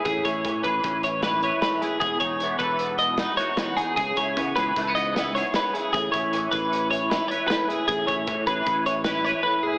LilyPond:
<<
  \new Staff \with { instrumentName = "Clean electric guitar" } { \time 5/4 \key a \lydian \tempo 4 = 153 gis'8 cis''4 b'4 cis''8 b'8 cis''8 b'8 gis'8 | gis'8 cis''4 b'4 dis''8 b'8 cis''8 b'8 gis'8 | gis'8 cis''4 b'4 dis''8 b'8 cis''8 b'8 gis'8 | gis'8 cis''4 b'4 cis''8 b'8 cis''8 b'8 gis'8 |
gis'8 cis''4 b'4 cis''8 b'8 cis''8 b'8 gis'8 | }
  \new Staff \with { instrumentName = "Clean electric guitar" } { \time 5/4 \key a \lydian << { r8 e'8 cis'8 gis'8 cis'4 e'8 b'4 e'8 | r8 dis'8 b8 a'8 b4 dis'8 fis'4 dis'8 | r8 e'8 b8 gis'8 a16 b8. e'8 gis'4 e'8 | r8 e'8 cis'8 gis'8 cis'4 e'8 b'4 e'8 |
r8 e'8 cis'8 gis'8 cis'4 e'8 b'4 e'8 | } \\ { <a, e>4 e4. e4. a,4 | e,4 e4. b,4. e,4 | cis4 e4. gis,4. cis4 | a,4 e4. e4. a,4 |
a,4 e4. e4. a,4 | } >> }
  \new Staff \with { instrumentName = "Fingered electric bass" } { \clef bass \time 5/4 \key a \lydian a,,8 a,,8 a,8 a,,8 a,,2 r4 | e,,8 e,,4 e,,2 r4. | cis,8 cis,8 cis8 cis,8 cis,2 r4 | a,,8 a,,4 a,,2 r4. |
a,,8 a,,8 a,8 a,,8 a,,2 r4 | }
  \new DrumStaff \with { instrumentName = "Drums" } \drummode { \time 5/4 <hh bd>8 <hh bd>8 <hh bd>8 <hh bd>8 <hh bd sn>8 hh8 <hh sn>8 hh8 <hh sn>8 <hh sn>8 | <hh bd>8 <hh bd>8 hh8 <hh bd>8 hh8 hh8 <hh sn>8 <hh sn>8 <hh sn>8 hh8 | <hh bd>8 <hh bd>8 <hh bd sn>8 <hh bd sn>8 <hh bd sn>8 hh8 <hh sn>8 hh8 <hh sn>8 hh8 | <hh bd>8 <hh bd>8 hh8 <hh bd>8 hh8 hh8 <hh sn>8 hh8 <hh sn>8 hh8 |
<hh bd>8 <hh bd>8 <hh bd>8 <hh bd>8 <hh bd>8 hh8 <hh sn>8 hh8 r4 | }
>>